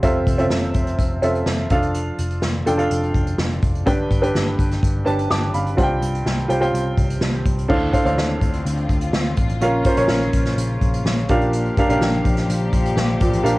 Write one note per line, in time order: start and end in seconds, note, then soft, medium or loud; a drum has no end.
0.03 0.23 F1 medium
0.03 0.71 C3 medium
0.03 0.36 C4 medium
0.03 0.36 F4 medium
0.03 0.36 A4 medium
0.03 0.36 E5 medium
0.03 kick loud
0.03 closed hi-hat medium
0.27 0.47 F1 medium
0.27 kick medium
0.27 closed hi-hat medium
0.38 1.15 C4 medium
0.38 1.15 F4 medium
0.38 1.15 A4 medium
0.38 1.16 E5 medium
0.38 closed hi-hat soft
0.50 0.71 F1 medium
0.50 snare medium
0.63 closed hi-hat soft
0.74 0.95 F1 medium
0.74 kick medium
0.74 closed hi-hat medium
0.87 closed hi-hat soft
0.99 1.18 F1 medium
0.99 kick medium
0.99 closed hi-hat medium
1.22 1.42 F1 medium
1.22 1.71 C4 medium
1.22 1.70 F4 medium
1.22 1.70 A4 medium
1.22 1.71 E5 medium
1.22 closed hi-hat medium
1.35 closed hi-hat soft
1.46 1.66 F1 medium
1.46 snare medium
1.70 2.10 F1 medium
1.70 2.39 F3 medium
1.70 2.58 D4 medium
1.70 2.58 F4 medium
1.70 2.58 A4 medium
1.70 2.58 F5 medium
1.70 kick medium
1.70 closed hi-hat medium
1.82 closed hi-hat soft
1.94 closed hi-hat medium
2.19 2.39 F1 medium
2.19 closed hi-hat medium
2.31 closed hi-hat soft
2.42 2.63 F1 medium
2.42 snare medium
2.66 2.87 F1 medium
2.66 2.76 D4 medium
2.66 2.76 F4 medium
2.66 2.77 A4 medium
2.66 2.78 G5 medium
2.66 closed hi-hat medium
2.78 3.65 D4 medium
2.78 3.65 F4 medium
2.78 3.66 A4 medium
2.78 3.66 F5 medium
2.78 closed hi-hat soft
2.91 3.10 F1 medium
2.91 closed hi-hat medium
3.03 closed hi-hat soft
3.14 3.34 F1 medium
3.14 kick medium
3.14 closed hi-hat medium
3.27 closed hi-hat soft
3.38 3.58 F1 medium
3.38 snare loud
3.52 closed hi-hat soft
3.62 3.82 F1 medium
3.62 kick medium
3.62 closed hi-hat medium
3.75 closed hi-hat soft
3.86 4.06 G1 medium
3.86 4.54 G2 medium
3.86 4.54 D3 medium
3.86 4.19 D4 medium
3.86 4.19 G4 medium
3.86 4.19 B4 medium
3.86 4.19 G5 medium
3.86 kick loud
3.86 closed hi-hat medium
4.10 4.30 G1 medium
4.10 kick medium
4.10 closed hi-hat medium
4.22 4.98 D4 medium
4.22 4.99 G4 medium
4.22 4.98 B4 medium
4.22 4.99 G5 medium
4.22 closed hi-hat soft
4.35 4.54 G1 medium
4.35 snare medium
4.59 4.78 G1 medium
4.59 kick medium
4.59 closed hi-hat medium
4.71 snare soft
4.71 closed hi-hat soft
4.83 5.02 G1 medium
4.83 kick medium
4.83 closed hi-hat medium
5.05 5.27 G1 medium
5.05 5.71 D4 medium
5.05 5.71 G4 medium
5.05 5.71 B4 medium
5.05 5.30 A5 medium
5.05 closed hi-hat medium
5.19 closed hi-hat medium
5.30 5.50 G1 medium
5.30 5.54 A5 soft
5.30 5.53 D6 medium
5.30 snare loud
5.54 5.74 G1 medium
5.54 6.00 F5 medium
5.54 6.00 B5 medium
5.54 closed hi-hat medium
5.66 closed hi-hat soft
5.77 5.98 C2 medium
5.77 6.46 G2 medium
5.77 6.43 F4 medium
5.77 6.43 G4 medium
5.77 6.43 C5 medium
5.77 5.84 F#5 medium
5.77 kick loud
5.77 closed hi-hat medium
5.83 6.46 G5 medium
6.01 6.22 C2 medium
6.01 closed hi-hat medium
6.15 closed hi-hat soft
6.26 6.46 C2 medium
6.26 snare medium
6.39 closed hi-hat soft
6.48 6.69 C2 medium
6.48 6.59 F4 medium
6.48 6.59 G4 medium
6.48 6.59 C5 medium
6.48 6.60 G5 medium
6.48 closed hi-hat medium
6.60 7.49 F4 medium
6.60 7.48 G4 medium
6.60 7.49 C5 medium
6.60 7.49 G5 medium
6.60 closed hi-hat soft
6.73 6.93 C2 medium
6.73 closed hi-hat medium
6.98 7.18 C2 medium
6.98 kick medium
6.98 closed hi-hat medium
7.10 closed hi-hat soft
7.21 7.41 C2 medium
7.21 snare loud
7.46 7.66 C2 medium
7.46 kick medium
7.46 closed hi-hat medium
7.58 closed hi-hat soft
7.68 7.90 D2 medium
7.68 8.37 A2 medium
7.68 9.60 D3 medium
7.68 9.60 C4 medium
7.68 7.91 D4 medium
7.68 11.26 F4 medium
7.68 7.91 A4 medium
7.68 7.91 C5 medium
7.68 7.92 F5 medium
7.68 kick loud
7.68 crash medium
7.92 8.03 D4 medium
7.92 8.03 A4 medium
7.92 8.03 C5 medium
7.92 8.04 F5 medium
7.92 kick medium
7.92 closed hi-hat medium
8.04 8.16 D2 medium
8.04 8.92 D4 medium
8.04 8.92 A4 medium
8.04 8.92 C5 medium
8.04 8.93 F5 medium
8.04 closed hi-hat medium
8.17 8.37 D2 medium
8.17 snare medium
8.41 8.61 D2 medium
8.41 kick medium
8.41 closed hi-hat medium
8.53 closed hi-hat soft
8.66 8.85 D2 medium
8.66 closed hi-hat medium
8.77 closed hi-hat soft
8.89 9.09 D2 medium
8.89 kick medium
8.89 closed hi-hat medium
9.01 closed hi-hat medium
9.13 9.33 D2 medium
9.13 snare loud
9.37 9.57 A1 medium
9.37 kick medium
9.37 closed hi-hat medium
9.49 closed hi-hat soft
9.61 9.81 A#1 medium
9.61 11.28 C#3 medium
9.61 13.59 A#3 medium
9.61 9.83 C#4 medium
9.61 9.84 F4 medium
9.61 9.84 A#4 medium
9.61 9.84 F5 medium
9.61 closed hi-hat medium
9.84 9.95 C#4 medium
9.84 9.96 F4 medium
9.84 9.96 A#4 medium
9.84 9.97 C5 medium
9.84 kick medium
9.84 closed hi-hat medium
9.97 10.07 A#1 medium
9.97 10.84 C#4 medium
9.97 10.85 F4 medium
9.97 10.85 A#4 medium
9.97 10.85 C#5 medium
9.97 closed hi-hat medium
10.08 10.29 A#1 medium
10.08 snare medium
10.22 closed hi-hat soft
10.33 10.53 A#1 medium
10.33 kick medium
10.33 closed hi-hat medium
10.45 snare soft
10.45 closed hi-hat soft
10.57 10.77 A#1 medium
10.57 closed hi-hat medium
10.81 11.01 A#1 medium
10.81 kick medium
10.81 closed hi-hat medium
10.94 closed hi-hat medium
11.05 11.25 A#1 medium
11.05 snare loud
11.19 closed hi-hat soft
11.29 11.69 A#1 medium
11.29 11.98 A#2 medium
11.29 13.59 F3 medium
11.29 11.73 D4 medium
11.29 11.73 G4 medium
11.29 13.59 G4 medium
11.29 11.73 A#4 medium
11.29 11.74 F5 medium
11.29 kick medium
11.29 closed hi-hat medium
11.41 closed hi-hat soft
11.53 closed hi-hat medium
11.66 closed hi-hat soft
11.77 11.88 D4 medium
11.77 11.87 G4 medium
11.77 11.88 A#4 medium
11.77 11.88 F5 medium
11.77 kick medium
11.77 closed hi-hat medium
11.89 11.99 A#1 medium
11.89 12.76 D4 medium
11.89 12.76 G4 medium
11.89 12.77 A#4 medium
11.89 12.77 F5 medium
11.89 closed hi-hat medium
12.01 12.21 A#1 medium
12.01 snare medium
12.14 closed hi-hat soft
12.25 12.45 A#1 medium
12.25 kick medium
12.25 closed hi-hat medium
12.37 snare soft
12.37 closed hi-hat soft
12.49 12.68 A#1 loud
12.49 closed hi-hat medium
12.73 12.93 A#1 medium
12.73 kick medium
12.73 closed hi-hat medium
12.85 closed hi-hat medium
12.96 13.16 A#1 medium
12.96 snare loud
13.20 13.41 A1 medium
13.20 13.59 A#2 medium
13.20 kick medium
13.20 closed hi-hat medium
13.33 closed hi-hat soft
13.43 13.59 A#1 medium
13.43 13.59 D4 medium
13.43 13.59 G4 medium
13.43 13.59 A#4 medium
13.43 13.59 F5 medium
13.43 closed hi-hat medium